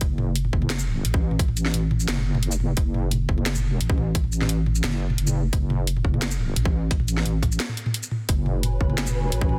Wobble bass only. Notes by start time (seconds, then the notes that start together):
0.01 F#1
0.53 F#1
1.05 A1
2.08 F#1
2.77 F#1
3.29 F#1
3.80 A1
4.84 F#1
5.18 F#1
5.53 F#1
6.04 F#1
6.56 A1
8.29 F#1
8.81 F#1
9.32 A1